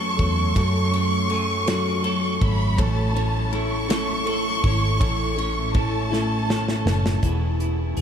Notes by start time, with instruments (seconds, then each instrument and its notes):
Already playing: fingered electric bass F#2, clean electric guitar F#2 F#3 A3 C#4, steel-string acoustic guitar F#3 A3 C#4 A4, violin section C#6
0.17 fingered electric bass E2, steel-string acoustic guitar F#3 A3 C#4 A4, kick, ride
0.54 steel-string acoustic guitar F#2 C#3 F#3 A3 C#4 A4, fingered electric bass F#2, kick, ride
0.91 steel-string acoustic guitar F#3 A3 C#4 A4, ride
1.29 steel-string acoustic guitar F#3 A3 C#4 A4, ride
1.66 steel-string acoustic guitar F#2 C#3 F#3 A3 C#4 A4, snare, ride
2.02 steel-string acoustic guitar F#3 A3 C#4 A4, ride
2.40 fingered electric bass G#1, steel-string acoustic guitar F#3 A3 C#4 A4, violin section B5, kick, ride
2.77 fingered electric bass A1, steel-string acoustic guitar A2 E3 A3 C#4 E4 A4, violin section A5, kick, ride
3.14 steel-string acoustic guitar A3 C#4 E4 A4, ride
3.51 steel-string acoustic guitar A3 C#4 E4 A4, violin section C#6, ride
3.88 steel-string acoustic guitar A2 E3 A3 C#4 E4 A4, snare, ride
4.25 steel-string acoustic guitar A3 C#4 E4 A4, ride
4.62 fingered electric bass G#1, steel-string acoustic guitar A3 C#4 E4 A4, kick, ride
4.99 fingered electric bass A1, steel-string acoustic guitar A2 E3 A3 C#4 E4 A4, kick, ride
5.36 steel-string acoustic guitar A3 C#4 E4 A4, ride
5.73 steel-string acoustic guitar A3 C#4 E4 A4, violin section A5, kick, ride
6.11 steel-string acoustic guitar A2 E3 A3 C#4 E4 A4, snare
6.48 steel-string acoustic guitar A3 C#4 E4 A4, snare
6.68 snare
6.85 fingered electric bass F#1, steel-string acoustic guitar A3 C#4 E4 A4, violin section A5, snare
7.06 snare
7.23 fingered electric bass E1, steel-string acoustic guitar E3 B3 E4 G#4, kick, closed hi-hat
7.59 steel-string acoustic guitar B3 E4 G#4, closed hi-hat
7.96 fingered electric bass E1, steel-string acoustic guitar E3 B3, clean electric guitar G#4, closed hi-hat